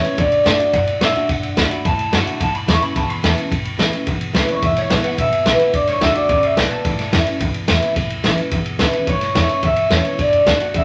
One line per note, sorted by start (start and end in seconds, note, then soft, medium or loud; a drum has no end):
0.00 0.15 E2 medium
0.00 0.17 E4 medium
0.00 0.17 C#5 medium
0.04 0.18 C#4 medium
0.04 muted upright bass stroke medium
0.04 ride medium
0.17 0.29 D2 loud
0.17 0.43 D3 medium
0.17 0.46 D5 medium
0.17 kick loud
0.17 ride medium
0.32 muted upright bass stroke medium
0.32 ride medium
0.44 0.56 A2 medium
0.44 0.58 D3 medium
0.44 0.59 A3 medium
0.44 0.59 D4 medium
0.44 0.57 F#4 medium
0.44 0.75 D5 medium
0.44 kick medium
0.44 snare loud
0.44 ride medium
0.59 0.73 D4 medium
0.59 0.73 F#4 medium
0.59 muted upright bass stroke medium
0.59 ride medium
0.74 0.84 F#2 loud
0.74 1.26 A2 medium
0.74 1.02 F#5 medium
0.74 kick loud
0.74 ride medium
0.87 muted upright bass stroke medium
0.87 ride medium
1.01 1.12 A2 loud
1.01 1.15 D3 medium
1.01 1.15 A3 medium
1.01 1.15 D4 medium
1.01 1.14 F#4 medium
1.01 1.30 E5 medium
1.01 snare loud
1.01 ride medium
1.15 1.29 D4 medium
1.15 1.28 F#4 medium
1.15 muted upright bass stroke medium
1.15 ride medium
1.29 1.40 D2 medium
1.29 1.55 D3 medium
1.29 1.58 F#5 medium
1.29 kick loud
1.29 ride medium
1.43 1.54 F#2 medium
1.43 ride medium
1.56 1.68 D2 medium
1.56 1.70 D3 medium
1.56 1.70 A3 medium
1.56 1.71 D4 medium
1.56 1.69 F#4 medium
1.56 1.86 B5 loud
1.56 kick medium
1.56 snare loud
1.56 ride medium
1.70 1.85 D4 medium
1.70 1.84 F#4 medium
1.70 muted upright bass stroke medium
1.70 ride medium
1.85 1.96 D2 loud
1.85 2.38 A2 loud
1.85 2.14 A5 loud
1.85 kick loud
1.85 ride medium
1.99 muted upright bass stroke medium
1.99 ride medium
2.12 2.24 F#2 medium
2.12 2.39 D3 medium
2.12 2.39 A3 medium
2.12 2.39 D4 medium
2.12 2.40 F#4 medium
2.12 2.42 F#5 medium
2.12 snare loud
2.12 ride medium
2.26 muted upright bass stroke medium
2.26 ride medium
2.40 2.51 A1 loud
2.40 2.93 A2 medium
2.40 2.55 A5 loud
2.40 kick loud
2.40 ride medium
2.54 2.69 B5 medium
2.54 muted upright bass stroke medium
2.54 ride medium
2.66 2.79 E2 medium
2.66 2.81 E3 medium
2.66 2.81 A3 medium
2.66 2.81 C#4 medium
2.66 2.79 E4 loud
2.66 2.82 C#6 loud
2.66 kick medium
2.66 snare loud
2.66 ride medium
2.80 2.96 C#4 soft
2.80 2.95 E4 medium
2.80 2.97 B5 loud
2.80 muted upright bass stroke medium
2.80 ride medium
2.95 3.06 C#2 loud
2.95 3.48 E2 medium
2.95 3.10 A5 loud
2.95 kick loud
2.95 ride medium
3.09 3.24 B5 loud
3.09 muted upright bass stroke medium
3.09 ride medium
3.23 3.34 E2 loud
3.23 3.36 E3 medium
3.23 3.37 A3 medium
3.23 3.37 C#4 medium
3.23 3.36 E4 loud
3.23 3.52 A5 medium
3.23 snare loud
3.23 ride medium
3.37 3.51 C#4 medium
3.37 3.51 E4 medium
3.37 muted upright bass stroke medium
3.37 ride medium
3.51 3.62 A1 loud
3.51 4.04 A2 medium
3.51 kick loud
3.51 ride medium
3.64 3.76 C#2 medium
3.64 ride medium
3.78 3.90 A1 medium
3.78 3.92 E3 medium
3.78 3.92 A3 medium
3.78 3.92 C#4 medium
3.78 3.91 E4 medium
3.78 snare loud
3.78 ride medium
3.92 4.07 C#4 soft
3.92 4.06 E4 medium
3.92 muted upright bass stroke medium
3.92 ride medium
4.06 4.18 A1 loud
4.06 4.59 E2 medium
4.06 kick loud
4.06 ride medium
4.21 muted upright bass stroke medium
4.21 ride medium
4.33 4.45 C#2 loud
4.33 4.47 E3 medium
4.33 4.48 A3 medium
4.33 4.48 C#4 medium
4.33 4.47 E4 loud
4.33 4.51 B4 medium
4.33 snare loud
4.33 ride medium
4.48 4.62 C#4 medium
4.48 4.62 E4 medium
4.48 4.64 C#5 medium
4.48 muted upright bass stroke medium
4.48 ride medium
4.62 4.73 E1 loud
4.62 5.15 E2 medium
4.62 4.78 E5 medium
4.62 kick loud
4.62 ride medium
4.76 4.92 C#5 medium
4.76 muted upright bass stroke medium
4.76 snare soft
4.76 ride medium
4.89 5.01 B1 medium
4.89 5.03 E3 medium
4.89 5.04 G#3 medium
4.89 5.04 B3 medium
4.89 5.02 E4 loud
4.89 5.05 B4 medium
4.89 kick medium
4.89 snare loud
4.89 ride medium
5.03 5.18 B3 soft
5.03 5.17 E4 medium
5.03 5.19 F#5 medium
5.03 muted upright bass stroke medium
5.03 ride medium
5.18 5.29 G#1 medium
5.18 5.71 B2 medium
5.18 5.70 E5 medium
5.18 kick loud
5.18 ride medium
5.31 muted upright bass stroke medium
5.31 ride medium
5.45 5.57 B1 loud
5.45 5.59 E3 medium
5.45 5.60 G#3 medium
5.45 5.60 B3 medium
5.45 5.58 E4 loud
5.45 snare loud
5.45 ride medium
5.59 5.74 B3 medium
5.59 5.73 E4 medium
5.59 muted upright bass stroke medium
5.59 ride medium
5.73 5.84 D2 medium
5.73 6.00 D3 medium
5.73 5.88 D5 medium
5.73 kick loud
5.73 ride medium
5.87 5.98 F#2 medium
5.87 6.01 C#5 medium
5.87 snare soft
5.87 ride medium
6.01 6.12 D2 medium
6.01 6.15 D3 medium
6.01 6.15 A3 medium
6.01 6.15 D4 loud
6.01 6.13 F#4 loud
6.01 6.15 E5 loud
6.01 kick medium
6.01 snare loud
6.01 ride medium
6.15 6.29 D4 medium
6.15 6.28 F#4 medium
6.15 6.29 D5 loud
6.15 muted upright bass stroke medium
6.15 ride medium
6.29 6.40 D2 medium
6.29 6.56 C#3 medium
6.29 6.44 D5 medium
6.29 kick loud
6.29 ride medium
6.43 6.58 E5 medium
6.43 muted upright bass stroke medium
6.43 ride medium
6.57 6.68 B1 loud
6.57 6.84 B2 medium
6.57 6.71 F#5 loud
6.57 snare loud
6.57 ride medium
6.70 8.80 A5 medium
6.70 muted upright bass stroke medium
6.70 ride medium
6.84 6.96 A1 loud
6.84 7.38 A2 medium
6.84 kick loud
6.84 ride medium
6.99 muted upright bass stroke medium
6.99 snare soft
6.99 ride medium
7.12 7.24 E2 medium
7.12 7.26 E3 medium
7.12 7.26 A3 medium
7.12 7.26 C#4 medium
7.12 7.24 E4 loud
7.12 kick medium
7.12 snare loud
7.12 ride medium
7.26 7.41 C#4 medium
7.26 7.40 E4 medium
7.26 muted upright bass stroke medium
7.26 ride medium
7.40 7.51 C#2 loud
7.40 7.93 E2 loud
7.40 kick loud
7.40 ride medium
7.54 muted upright bass stroke medium
7.54 ride medium
7.67 7.79 E2 loud
7.67 7.94 E3 medium
7.67 7.95 A3 medium
7.67 7.95 C#4 loud
7.67 7.95 E4 medium
7.67 snare loud
7.67 ride loud
7.82 muted upright bass stroke medium
7.82 ride medium
7.96 8.07 A1 loud
7.96 8.49 A2 medium
7.96 kick loud
7.96 ride medium
8.10 8.21 C#2 loud
8.10 ride medium
8.23 8.35 A1 medium
8.23 8.37 E3 medium
8.23 8.37 A3 medium
8.23 8.38 C#4 medium
8.23 8.37 E4 loud
8.23 snare loud
8.23 ride medium
8.38 8.52 C#4 soft
8.38 8.51 E4 medium
8.38 muted upright bass stroke medium
8.38 ride medium
8.51 8.62 A1 loud
8.51 9.05 E2 loud
8.51 kick loud
8.51 ride medium
8.66 muted upright bass stroke medium
8.66 ride medium
8.79 8.90 C#2 loud
8.79 8.93 E3 medium
8.79 8.93 A3 medium
8.79 8.93 C#4 medium
8.79 8.92 E4 loud
8.79 9.09 B4 medium
8.79 snare loud
8.79 ride medium
8.93 9.08 C#4 medium
8.93 9.07 E4 medium
8.93 muted upright bass stroke medium
8.93 ride medium
9.07 9.18 A1 medium
9.07 9.60 A2 medium
9.07 9.36 C#5 medium
9.07 kick loud
9.07 ride medium
9.21 muted upright bass stroke medium
9.21 snare soft
9.21 ride medium
9.35 9.46 E2 medium
9.35 9.49 E3 medium
9.35 9.49 A3 medium
9.35 9.49 C#4 loud
9.35 9.48 E4 medium
9.35 9.65 C#5 medium
9.35 kick medium
9.35 snare loud
9.35 ride medium
9.49 9.64 C#4 soft
9.49 9.63 E4 medium
9.49 muted upright bass stroke medium
9.49 ride medium
9.63 9.74 C#2 medium
9.63 10.16 E2 medium
9.63 9.90 E5 loud
9.63 kick loud
9.63 ride medium
9.76 muted upright bass stroke medium
9.76 ride medium
9.90 10.01 E2 loud
9.90 10.04 E3 medium
9.90 10.05 A3 medium
9.90 10.04 C#4 medium
9.90 10.03 E4 medium
9.90 10.18 C#5 medium
9.90 snare loud
9.90 ride medium
10.04 10.19 C#4 medium
10.04 10.18 E4 medium
10.04 muted upright bass stroke medium
10.04 ride medium
10.18 10.30 D2 medium
10.18 10.45 D3 medium
10.18 10.46 D5 loud
10.18 kick loud
10.18 ride medium
10.32 10.43 F#2 medium
10.32 ride medium
10.46 10.57 D2 medium
10.46 10.60 D3 medium
10.46 10.60 A3 medium
10.46 10.60 D4 medium
10.46 10.59 F#4 medium
10.46 10.73 F#5 loud
10.46 kick medium
10.46 snare loud
10.46 ride medium
10.60 10.74 D4 soft
10.60 10.74 F#4 medium
10.60 muted upright bass stroke medium
10.60 ride medium
10.74 10.84 D2 loud
10.74 10.84 C#3 medium
10.74 10.84 E5 loud
10.74 kick loud
10.74 ride medium